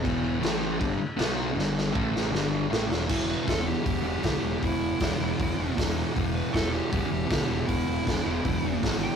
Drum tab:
CC |x-x-x-x-|--------|x-------|--------|
HH |--------|--------|--o-o-o-|o-o-o-o-|
SD |--o---o-|oo-oo-oo|--o---o-|--o---o-|
BD |o---o---|--o-----|o-o-o-o-|o-o-o-o-|

CC |--------|--------|
HH |o-o-o-o-|o-o-o-o-|
SD |--o---o-|--o---o-|
BD |o-o-o-o-|o-o-o-o-|